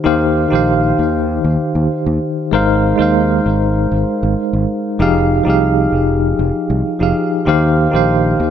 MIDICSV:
0, 0, Header, 1, 3, 480
1, 0, Start_track
1, 0, Key_signature, -3, "major"
1, 0, Tempo, 618557
1, 40, Time_signature, 4, 2, 24, 8
1, 6598, End_track
2, 0, Start_track
2, 0, Title_t, "Tine electric piano"
2, 0, Program_c, 0, 4
2, 0, Control_c, 0, 64, 127
2, 0, Note_on_c, 0, 51, 70
2, 0, Note_on_c, 0, 63, 68
2, 0, Note_on_c, 0, 67, 70
2, 0, Note_on_c, 0, 72, 69
2, 0, Note_on_c, 0, 77, 83
2, 27, Note_off_c, 0, 51, 0
2, 27, Note_on_c, 0, 51, 98
2, 32, Note_off_c, 0, 63, 0
2, 32, Note_on_c, 0, 63, 81
2, 39, Note_off_c, 0, 67, 0
2, 39, Note_on_c, 0, 67, 89
2, 45, Note_off_c, 0, 72, 0
2, 45, Note_on_c, 0, 72, 81
2, 51, Note_off_c, 0, 77, 0
2, 51, Note_on_c, 0, 77, 103
2, 365, Note_off_c, 0, 51, 0
2, 368, Note_off_c, 0, 63, 0
2, 371, Note_off_c, 0, 67, 0
2, 374, Note_off_c, 0, 72, 0
2, 377, Note_off_c, 0, 77, 0
2, 378, Note_on_c, 0, 51, 77
2, 391, Note_on_c, 0, 63, 73
2, 401, Note_on_c, 0, 67, 68
2, 413, Note_on_c, 0, 72, 72
2, 430, Note_on_c, 0, 77, 88
2, 1920, Note_off_c, 0, 51, 0
2, 1927, Note_off_c, 0, 63, 0
2, 1932, Note_off_c, 0, 67, 0
2, 1938, Note_off_c, 0, 72, 0
2, 1946, Note_off_c, 0, 77, 0
2, 1951, Note_on_c, 0, 56, 93
2, 1961, Note_on_c, 0, 63, 85
2, 1963, Note_on_c, 0, 70, 91
2, 1971, Control_c, 0, 64, 0
2, 1971, Note_on_c, 0, 72, 90
2, 1980, Note_on_c, 0, 77, 106
2, 2099, Control_c, 0, 64, 127
2, 2287, Note_off_c, 0, 56, 0
2, 2292, Note_off_c, 0, 63, 0
2, 2293, Note_off_c, 0, 70, 0
2, 2297, Note_off_c, 0, 72, 0
2, 2297, Note_on_c, 0, 56, 78
2, 2301, Note_off_c, 0, 77, 0
2, 2309, Note_on_c, 0, 63, 70
2, 2318, Note_on_c, 0, 70, 71
2, 2332, Note_on_c, 0, 72, 73
2, 2344, Note_on_c, 0, 77, 81
2, 3840, Note_off_c, 0, 56, 0
2, 3846, Note_off_c, 0, 63, 0
2, 3851, Note_off_c, 0, 70, 0
2, 3857, Note_off_c, 0, 72, 0
2, 3863, Note_off_c, 0, 77, 0
2, 3874, Note_on_c, 0, 53, 98
2, 3881, Note_on_c, 0, 63, 86
2, 3886, Note_on_c, 0, 67, 88
2, 3891, Note_on_c, 0, 68, 84
2, 3892, Control_c, 0, 64, 0
2, 3896, Note_on_c, 0, 77, 108
2, 4011, Control_c, 0, 64, 127
2, 4207, Note_off_c, 0, 53, 0
2, 4212, Note_off_c, 0, 63, 0
2, 4214, Note_off_c, 0, 67, 0
2, 4216, Note_on_c, 0, 53, 77
2, 4217, Note_off_c, 0, 68, 0
2, 4219, Note_off_c, 0, 77, 0
2, 4228, Note_on_c, 0, 63, 75
2, 4241, Note_on_c, 0, 67, 70
2, 4253, Note_on_c, 0, 68, 71
2, 4266, Note_on_c, 0, 77, 83
2, 5404, Note_off_c, 0, 53, 0
2, 5411, Note_off_c, 0, 63, 0
2, 5417, Note_off_c, 0, 67, 0
2, 5423, Note_off_c, 0, 68, 0
2, 5426, Note_on_c, 0, 53, 68
2, 5430, Note_off_c, 0, 77, 0
2, 5432, Note_on_c, 0, 63, 59
2, 5440, Note_on_c, 0, 67, 57
2, 5446, Note_on_c, 0, 68, 64
2, 5454, Note_on_c, 0, 77, 74
2, 5764, Note_off_c, 0, 53, 0
2, 5768, Note_off_c, 0, 63, 0
2, 5771, Note_off_c, 0, 67, 0
2, 5774, Note_off_c, 0, 68, 0
2, 5778, Note_off_c, 0, 77, 0
2, 5785, Note_on_c, 0, 51, 90
2, 5791, Note_on_c, 0, 63, 81
2, 5797, Note_on_c, 0, 67, 88
2, 5804, Note_on_c, 0, 72, 86
2, 5810, Control_c, 0, 64, 0
2, 5810, Note_on_c, 0, 77, 106
2, 5966, Control_c, 0, 64, 127
2, 6124, Note_off_c, 0, 51, 0
2, 6127, Note_off_c, 0, 63, 0
2, 6130, Note_off_c, 0, 67, 0
2, 6133, Note_on_c, 0, 51, 80
2, 6134, Note_off_c, 0, 72, 0
2, 6137, Note_off_c, 0, 77, 0
2, 6143, Note_on_c, 0, 63, 68
2, 6157, Note_on_c, 0, 67, 69
2, 6167, Note_on_c, 0, 72, 72
2, 6179, Note_on_c, 0, 77, 87
2, 6598, Note_off_c, 0, 51, 0
2, 6598, Note_off_c, 0, 63, 0
2, 6598, Note_off_c, 0, 67, 0
2, 6598, Note_off_c, 0, 72, 0
2, 6598, Note_off_c, 0, 77, 0
2, 6598, End_track
3, 0, Start_track
3, 0, Title_t, "Fretless electric bass"
3, 0, Program_c, 1, 35
3, 46, Note_on_c, 1, 39, 94
3, 349, Note_off_c, 1, 39, 0
3, 406, Note_on_c, 1, 34, 81
3, 709, Note_off_c, 1, 34, 0
3, 768, Note_on_c, 1, 39, 88
3, 1070, Note_off_c, 1, 39, 0
3, 1120, Note_on_c, 1, 39, 85
3, 1207, Note_off_c, 1, 39, 0
3, 1359, Note_on_c, 1, 39, 88
3, 1446, Note_off_c, 1, 39, 0
3, 1602, Note_on_c, 1, 39, 92
3, 1687, Note_off_c, 1, 39, 0
3, 1960, Note_on_c, 1, 32, 92
3, 2267, Note_off_c, 1, 32, 0
3, 2323, Note_on_c, 1, 39, 77
3, 2628, Note_off_c, 1, 39, 0
3, 2684, Note_on_c, 1, 32, 88
3, 2988, Note_off_c, 1, 32, 0
3, 3039, Note_on_c, 1, 32, 86
3, 3126, Note_off_c, 1, 32, 0
3, 3281, Note_on_c, 1, 32, 86
3, 3367, Note_off_c, 1, 32, 0
3, 3517, Note_on_c, 1, 32, 84
3, 3605, Note_off_c, 1, 32, 0
3, 3877, Note_on_c, 1, 29, 90
3, 4185, Note_off_c, 1, 29, 0
3, 4241, Note_on_c, 1, 36, 78
3, 4547, Note_off_c, 1, 36, 0
3, 4597, Note_on_c, 1, 29, 81
3, 4905, Note_off_c, 1, 29, 0
3, 4959, Note_on_c, 1, 29, 88
3, 5046, Note_off_c, 1, 29, 0
3, 5198, Note_on_c, 1, 36, 87
3, 5285, Note_off_c, 1, 36, 0
3, 5438, Note_on_c, 1, 29, 91
3, 5525, Note_off_c, 1, 29, 0
3, 5797, Note_on_c, 1, 39, 89
3, 6105, Note_off_c, 1, 39, 0
3, 6160, Note_on_c, 1, 34, 78
3, 6466, Note_off_c, 1, 34, 0
3, 6517, Note_on_c, 1, 39, 88
3, 6598, Note_off_c, 1, 39, 0
3, 6598, End_track
0, 0, End_of_file